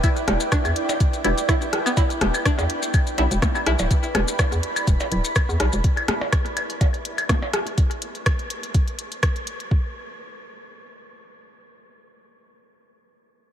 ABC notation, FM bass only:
X:1
M:4/4
L:1/16
Q:"Swing 16ths" 1/4=124
K:Em
V:1 name="FM bass" clef=bass
z2 E,,, z2 E,, z4 E,,, z4 z | z2 E,,, z2 E,, z4 B,,, E,,, z2 B,,, D,,, | z2 E,,, z2 E,, z2 E,,, z D,,, z2 E,, B,,, E,,, | z16 |
z16 | z16 | z16 |]